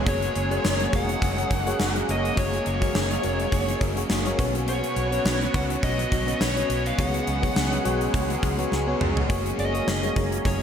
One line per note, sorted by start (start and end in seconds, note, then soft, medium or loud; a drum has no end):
0.00 4.35 F#3 medium
0.00 4.35 G#3 medium
0.00 3.01 C#4 medium
0.00 6.95 C#4 medium
0.00 4.35 G#4 medium
0.06 0.27 F#1 loud
0.06 0.62 F#2 medium
0.06 0.64 C#3 medium
0.06 0.66 F#3 medium
0.06 0.35 A#3 medium
0.06 4.35 A#3 medium
0.06 0.35 F#4 medium
0.06 0.36 G#4 medium
0.06 0.36 C#5 medium
0.06 0.97 C#5 medium
0.06 kick loud
0.06 closed hi-hat loud
0.22 closed hi-hat medium
0.36 0.56 F#1 medium
0.36 closed hi-hat medium
0.50 0.80 A#3 medium
0.50 0.80 F#4 medium
0.50 0.80 G#4 medium
0.50 0.80 C#5 medium
0.50 closed hi-hat medium
0.63 0.85 F#1 loud
0.63 1.20 F#2 medium
0.63 1.22 C#3 medium
0.63 1.24 F#3 medium
0.63 snare loud
0.63 tambourine medium
0.80 closed hi-hat soft
0.93 1.14 F1 medium
0.93 1.42 A#3 medium
0.93 1.42 F#4 medium
0.93 1.42 G#4 medium
0.93 1.42 C#5 medium
0.93 2.06 F#5 loud
0.93 kick loud
0.93 closed hi-hat medium
1.09 closed hi-hat medium
1.21 1.43 F#1 loud
1.21 1.78 F#2 medium
1.21 1.79 C#3 medium
1.21 1.82 F#3 medium
1.21 kick loud
1.21 closed hi-hat medium
1.38 closed hi-hat medium
1.51 1.72 F#1 medium
1.51 kick medium
1.51 closed hi-hat medium
1.66 1.85 A#3 medium
1.66 1.85 F#4 medium
1.66 1.85 G#4 medium
1.66 1.85 C#5 medium
1.66 closed hi-hat medium
1.79 2.01 F#1 loud
1.79 2.35 F#2 medium
1.79 2.37 C#3 medium
1.79 2.38 F#3 medium
1.79 snare loud
1.79 tambourine medium
1.95 2.24 A#3 medium
1.95 2.24 F#4 medium
1.95 2.24 G#4 medium
1.95 2.25 C#5 medium
1.95 closed hi-hat soft
2.09 2.29 F#1 medium
2.09 2.39 D#5 medium
2.09 closed hi-hat medium
2.25 closed hi-hat medium
2.36 2.58 F#1 loud
2.36 2.93 F#2 medium
2.36 2.95 C#3 medium
2.36 2.97 F#3 medium
2.36 2.66 A#3 medium
2.36 2.66 F#4 medium
2.36 2.66 G#4 medium
2.36 2.66 C#5 medium
2.36 kick loud
2.36 closed hi-hat loud
2.53 closed hi-hat medium
2.66 2.87 F#1 medium
2.66 3.78 C#5 medium
2.66 closed hi-hat medium
2.80 3.10 A#3 medium
2.80 3.10 F#4 medium
2.80 3.11 G#4 medium
2.80 3.11 C#5 medium
2.80 kick medium
2.80 closed hi-hat medium
2.94 3.16 F#1 loud
2.94 3.50 F#2 medium
2.94 3.52 C#3 medium
2.94 3.54 F#3 medium
2.94 snare loud
2.94 tambourine medium
3.11 closed hi-hat soft
3.22 3.45 F1 medium
3.22 3.72 A#3 medium
3.22 3.73 F#4 medium
3.22 3.73 G#4 medium
3.22 3.73 A#4 medium
3.22 closed hi-hat medium
3.40 closed hi-hat medium
3.51 3.73 F#1 loud
3.51 4.08 F#2 medium
3.51 4.10 C#3 medium
3.51 4.12 F#3 medium
3.51 kick medium
3.51 closed hi-hat medium
3.68 closed hi-hat medium
3.81 4.02 F#1 loud
3.81 kick medium
3.81 closed hi-hat medium
3.96 4.15 A#3 medium
3.96 4.16 F#4 medium
3.96 4.16 G#4 medium
3.96 4.16 C#5 medium
3.96 closed hi-hat medium
4.09 4.31 F#1 medium
4.09 4.39 F#2 medium
4.09 4.40 C#3 medium
4.09 4.38 F#3 medium
4.09 snare loud
4.09 tambourine medium
4.26 4.39 A#3 medium
4.26 4.38 F#4 medium
4.26 4.39 G#4 medium
4.26 4.38 C#5 loud
4.26 closed hi-hat medium
4.38 4.81 B1 medium
4.38 5.22 B2 medium
4.38 5.24 B2 medium
4.38 5.26 F#3 medium
4.38 4.96 B3 medium
4.38 5.27 B3 medium
4.38 9.25 B3 medium
4.38 4.97 C#4 medium
4.38 6.96 F#4 medium
4.38 4.97 F#4 medium
4.38 4.97 C#5 loud
4.38 kick loud
4.38 closed hi-hat medium
4.55 closed hi-hat medium
4.68 5.57 C#5 medium
4.68 closed hi-hat loud
4.84 closed hi-hat medium
4.96 5.17 B1 loud
4.96 closed hi-hat medium
5.11 5.41 B3 medium
5.11 5.41 C#4 medium
5.11 5.41 F#4 medium
5.11 5.42 C#5 medium
5.11 closed hi-hat medium
5.25 5.46 B1 loud
5.25 5.81 B2 medium
5.25 5.83 F#3 medium
5.25 5.85 B3 medium
5.25 snare loud
5.25 tambourine medium
5.41 closed hi-hat soft
5.54 5.75 C#2 medium
5.54 6.03 B3 medium
5.54 6.03 C#4 medium
5.54 6.04 F#4 medium
5.54 6.04 C#5 medium
5.54 5.63 F#5 loud
5.54 kick loud
5.54 closed hi-hat medium
5.70 closed hi-hat medium
5.82 6.04 B1 loud
5.82 6.39 B2 medium
5.82 6.41 F#3 medium
5.82 6.43 B3 medium
5.82 6.41 D#5 loud
5.82 kick medium
5.82 closed hi-hat medium
5.99 closed hi-hat medium
6.12 6.33 B1 loud
6.12 kick medium
6.12 closed hi-hat medium
6.27 6.46 B3 medium
6.27 6.46 C#4 medium
6.27 6.46 F#4 medium
6.27 6.46 C#5 medium
6.27 closed hi-hat medium
6.40 6.62 B1 loud
6.40 6.97 B2 medium
6.40 6.99 F#3 medium
6.40 7.00 B3 medium
6.40 6.87 C#5 loud
6.40 snare loud
6.40 tambourine medium
6.56 6.85 B3 medium
6.56 6.86 C#4 medium
6.56 6.86 F#4 medium
6.56 6.86 C#5 medium
6.56 closed hi-hat medium
6.70 6.90 B1 medium
6.70 closed hi-hat medium
6.86 6.98 F5 medium
6.86 closed hi-hat medium
6.98 7.19 C#2 loud
6.98 7.54 C#3 medium
6.98 7.81 C#3 medium
6.98 9.27 F#3 medium
6.98 9.27 G#3 medium
6.98 7.57 G#3 medium
6.98 7.27 B3 medium
6.98 9.27 C#4 medium
6.98 7.58 C#4 medium
6.98 7.27 F#4 medium
6.98 7.28 G#4 medium
6.98 9.27 G#4 medium
6.98 7.28 C#5 medium
6.98 8.69 F#5 medium
6.98 kick loud
6.98 closed hi-hat loud
7.14 closed hi-hat medium
7.27 7.48 C#2 loud
7.27 closed hi-hat medium
7.42 7.72 B3 medium
7.42 7.72 F#4 medium
7.42 7.72 G#4 medium
7.42 7.72 C#5 medium
7.42 kick medium
7.42 closed hi-hat medium
7.55 7.77 C#2 medium
7.55 8.12 C#3 medium
7.55 8.14 G#3 medium
7.55 8.16 C#4 medium
7.55 snare loud
7.55 tambourine medium
7.72 closed hi-hat soft
7.84 8.06 B1 medium
7.84 8.34 B3 medium
7.84 8.34 F#4 medium
7.84 8.34 G#4 medium
7.84 8.35 C#5 loud
7.84 closed hi-hat medium
8.01 closed hi-hat medium
8.13 8.35 C#2 loud
8.13 8.70 C#3 medium
8.13 8.73 G#3 medium
8.13 8.74 C#4 medium
8.13 kick loud
8.13 closed hi-hat medium
8.30 closed hi-hat medium
8.43 8.64 C#2 medium
8.43 kick medium
8.43 closed hi-hat medium
8.58 8.77 B3 medium
8.58 8.77 F#4 medium
8.58 8.77 G#4 medium
8.58 8.77 C#5 medium
8.58 closed hi-hat medium
8.71 8.93 C#2 medium
8.71 9.29 C#3 medium
8.71 9.81 G#3 medium
8.71 9.81 C#4 medium
8.71 snare medium
8.87 9.16 B3 medium
8.87 9.17 F#4 medium
8.87 9.17 G#4 medium
8.87 9.17 C#5 medium
9.01 9.22 C#2 medium
9.01 mid tom medium
9.17 floor tom medium
9.29 9.51 F#1 loud
9.29 10.62 F#3 medium
9.29 10.62 G#3 medium
9.29 9.58 A#3 medium
9.29 10.62 A#3 medium
9.29 10.62 C#4 medium
9.29 9.59 F#4 medium
9.29 9.59 G#4 medium
9.29 10.62 G#4 medium
9.29 9.59 C#5 medium
9.29 kick loud
9.29 closed hi-hat loud
9.46 closed hi-hat medium
9.58 9.79 F#1 loud
9.58 10.13 D#5 loud
9.58 closed hi-hat medium
9.74 9.92 A#3 medium
9.74 9.93 F#4 medium
9.74 9.93 G#4 medium
9.74 9.93 C#5 medium
9.74 closed hi-hat medium
9.87 10.08 F#1 medium
9.87 snare loud
10.03 10.12 A#3 medium
10.03 10.12 F#4 medium
10.03 10.12 G#4 medium
10.03 10.12 C#5 medium
10.03 closed hi-hat soft
10.16 10.37 F#1 loud
10.16 10.62 A#3 medium
10.16 10.62 F#4 medium
10.16 10.62 G#4 medium
10.16 10.62 C#5 medium
10.16 kick loud
10.16 closed hi-hat medium
10.32 closed hi-hat medium
10.45 10.62 F#1 loud
10.45 10.62 C#5 loud
10.45 kick medium
10.45 closed hi-hat medium